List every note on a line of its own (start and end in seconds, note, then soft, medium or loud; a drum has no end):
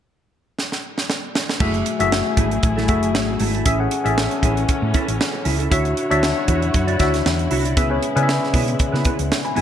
0.59 snare medium
0.72 snare medium
0.98 snare medium
1.10 snare medium
1.35 snare medium
1.49 snare medium
1.60 1.81 F#1 loud
1.60 3.64 F#3 medium
1.60 1.80 A3 medium
1.60 1.91 A3 medium
1.60 3.64 A3 medium
1.60 1.74 E4 medium
1.60 1.91 F#4 medium
1.60 1.91 G#4 medium
1.60 3.64 G#4 medium
1.60 1.73 G#4 medium
1.60 1.91 E5 medium
1.60 kick loud
1.60 crash medium
1.74 muted clean electric guitar stroke soft
1.74 closed hi-hat soft
1.86 muted clean electric guitar stroke soft
1.86 closed hi-hat medium
1.99 2.21 F#1 medium
1.99 2.69 A3 medium
1.99 2.15 A3 soft
1.99 2.15 E4 medium
1.99 2.70 F#4 medium
1.99 2.70 G#4 medium
1.99 2.15 A4 medium
1.99 2.70 E5 medium
1.99 closed hi-hat soft
2.12 snare loud
2.26 muted clean electric guitar stroke soft
2.37 2.58 G#1 medium
2.37 2.57 A3 medium
2.37 2.52 E4 medium
2.37 2.51 G#4 medium
2.37 kick medium
2.37 closed hi-hat medium
2.51 muted clean electric guitar stroke soft
2.51 closed hi-hat soft
2.63 2.89 A1 medium
2.63 muted clean electric guitar stroke soft
2.63 kick medium
2.63 closed hi-hat medium
2.77 2.87 A3 soft
2.77 2.88 E4 medium
2.77 2.89 A4 medium
2.77 snare soft
2.88 3.14 F#1 medium
2.88 3.49 A3 medium
2.88 3.09 A3 medium
2.88 3.03 E4 medium
2.88 3.49 F#4 medium
2.88 3.50 G#4 medium
2.88 3.02 A4 medium
2.88 3.50 E5 medium
2.88 kick medium
2.88 closed hi-hat medium
3.03 muted clean electric guitar stroke soft
3.03 closed hi-hat soft
3.14 3.35 G#1 medium
3.14 muted clean electric guitar stroke soft
3.14 snare loud
3.28 muted clean electric guitar stroke soft
3.40 3.61 G#1 medium
3.40 3.55 A3 medium
3.40 3.54 E4 medium
3.40 3.54 G#4 medium
3.40 open hi-hat medium
3.54 3.65 A3 medium
3.54 3.66 E4 medium
3.54 3.67 A4 medium
3.54 closed hi-hat soft
3.65 3.87 A1 loud
3.65 5.70 E3 medium
3.65 5.70 A3 medium
3.65 3.76 C#4 medium
3.65 3.86 C#4 medium
3.65 5.70 C#4 medium
3.65 3.80 E4 medium
3.65 3.77 G#4 medium
3.65 3.79 G#4 medium
3.65 3.77 A4 medium
3.65 3.77 E5 medium
3.65 kick loud
3.65 closed hi-hat medium
3.79 3.99 C#4 medium
3.79 3.99 G#4 medium
3.79 3.99 A4 medium
3.79 4.00 F#5 medium
3.79 muted clean electric guitar stroke soft
3.91 muted clean electric guitar stroke soft
3.91 closed hi-hat medium
4.04 4.26 A1 medium
4.04 4.85 C#4 medium
4.04 4.21 C#4 soft
4.04 4.20 E4 medium
4.04 4.85 G#4 medium
4.04 4.20 A4 medium
4.04 4.85 A4 medium
4.04 4.85 E5 medium
4.04 closed hi-hat medium
4.18 snare loud
4.31 muted clean electric guitar stroke soft
4.31 closed hi-hat soft
4.42 4.64 A1 medium
4.42 4.63 C#4 medium
4.42 4.57 E4 medium
4.42 4.55 G#4 medium
4.42 kick medium
4.42 closed hi-hat medium
4.56 muted clean electric guitar stroke soft
4.56 closed hi-hat soft
4.68 muted clean electric guitar stroke soft
4.68 muted fingered electric bass stroke soft
4.68 kick medium
4.68 closed hi-hat medium
4.82 4.92 A2 medium
4.82 muted clean electric guitar stroke soft
4.94 5.14 C#4 medium
4.94 5.08 E4 medium
4.94 5.07 A4 medium
4.94 kick medium
4.94 closed hi-hat medium
5.08 5.18 A1 medium
5.08 muted clean electric guitar stroke soft
5.08 closed hi-hat medium
5.20 muted clean electric guitar stroke soft
5.20 snare loud
5.33 muted clean electric guitar stroke soft
5.45 5.67 C#2 medium
5.45 5.59 C#4 medium
5.45 5.59 E4 medium
5.45 5.58 G#4 medium
5.45 open hi-hat medium
5.59 5.75 C#4 soft
5.59 5.69 E4 medium
5.59 5.71 A4 medium
5.59 closed hi-hat soft
5.70 5.92 D2 loud
5.70 7.75 D3 medium
5.70 6.02 D4 medium
5.70 5.91 E4 medium
5.70 9.61 E4 medium
5.70 6.02 F#4 medium
5.70 7.75 F#4 medium
5.70 5.85 F#4 medium
5.70 7.75 C#5 medium
5.70 6.02 C#5 medium
5.70 5.84 C#5 medium
5.70 6.02 E5 medium
5.70 kick loud
5.70 closed hi-hat medium
5.85 muted clean electric guitar stroke soft
5.85 closed hi-hat soft
5.97 muted clean electric guitar stroke soft
5.97 closed hi-hat medium
6.10 6.32 D2 medium
6.10 6.80 D4 medium
6.10 6.26 E4 soft
6.10 6.80 F#4 medium
6.10 6.26 F#4 medium
6.10 6.81 C#5 medium
6.10 6.25 D5 medium
6.10 6.81 E5 medium
6.10 closed hi-hat medium
6.23 snare loud
6.37 muted clean electric guitar stroke soft
6.48 6.69 E2 medium
6.48 6.68 E4 medium
6.48 6.62 F#4 medium
6.48 6.61 C#5 medium
6.48 kick medium
6.48 closed hi-hat medium
6.62 muted clean electric guitar stroke soft
6.62 closed hi-hat soft
6.74 6.95 F#2 medium
6.74 muted clean electric guitar stroke soft
6.74 kick medium
6.74 closed hi-hat medium
6.87 6.98 E4 soft
6.87 6.99 F#4 medium
6.87 7.00 D5 medium
6.87 closed hi-hat soft
6.99 7.21 D2 medium
6.99 7.60 D4 medium
6.99 7.19 E4 medium
6.99 7.61 F#4 medium
6.99 7.13 F#4 medium
6.99 7.61 C#5 medium
6.99 7.13 D5 medium
6.99 7.61 E5 medium
6.99 kick medium
6.99 snare soft
6.99 closed hi-hat medium
7.13 muted clean electric guitar stroke soft
7.13 snare soft
7.13 closed hi-hat medium
7.25 7.47 E2 medium
7.25 muted clean electric guitar stroke soft
7.25 snare medium
7.39 muted clean electric guitar stroke soft
7.39 closed hi-hat soft
7.51 7.77 C2 medium
7.51 7.66 E4 medium
7.51 7.65 F#4 medium
7.51 7.65 C#5 medium
7.51 open hi-hat medium
7.65 7.76 E4 soft
7.65 7.78 F#4 soft
7.65 7.79 D5 medium
7.65 closed hi-hat soft
7.76 7.98 C#2 loud
7.76 9.61 C#3 medium
7.76 9.61 G#3 medium
7.76 7.97 B3 medium
7.76 9.61 B3 medium
7.76 7.87 C#4 medium
7.76 7.91 E4 medium
7.76 7.88 G#4 medium
7.76 7.89 G#4 medium
7.76 7.88 B4 medium
7.76 7.88 E5 medium
7.76 kick loud
7.76 closed hi-hat medium
7.90 8.10 C#4 medium
7.90 8.10 G#4 medium
7.90 8.10 B4 medium
7.90 8.11 C#5 medium
7.90 muted clean electric guitar stroke soft
8.03 muted clean electric guitar stroke soft
8.03 closed hi-hat medium
8.16 8.37 C#3 loud
8.16 8.32 B3 medium
8.16 8.96 C#4 medium
8.16 8.31 E4 medium
8.16 8.96 G#4 medium
8.16 8.96 B4 medium
8.16 8.31 B4 medium
8.16 8.22 D5 medium
8.16 closed hi-hat medium
8.23 9.00 E5 medium
8.29 snare loud
8.42 muted clean electric guitar stroke soft
8.42 snare soft
8.53 8.75 B2 medium
8.53 8.74 B3 medium
8.53 8.67 E4 medium
8.53 8.66 G#4 medium
8.53 kick medium
8.53 open hi-hat medium
8.67 muted clean electric guitar stroke soft
8.67 closed hi-hat soft
8.79 muted clean electric guitar stroke soft
8.79 muted fingered electric bass stroke soft
8.79 kick medium
8.79 closed hi-hat medium
8.92 9.03 C#3 medium
8.92 9.03 B3 medium
8.92 9.05 E4 medium
8.92 9.05 B4 medium
8.92 snare soft
9.05 9.25 B3 medium
9.05 9.19 E4 medium
9.05 9.18 B4 medium
9.05 kick medium
9.05 closed hi-hat medium
9.19 9.29 C#2 medium
9.19 muted clean electric guitar stroke soft
9.19 closed hi-hat soft
9.31 muted clean electric guitar stroke soft
9.31 snare loud
9.45 9.56 G#5 soft
9.45 9.56 B5 medium
9.45 muted clean electric guitar stroke soft
9.45 closed hi-hat soft
9.56 9.61 F1 medium
9.56 9.61 B3 medium
9.56 9.61 E4 medium
9.56 9.61 G#4 medium
9.56 9.61 E5 medium
9.56 9.61 G#5 medium
9.56 open hi-hat medium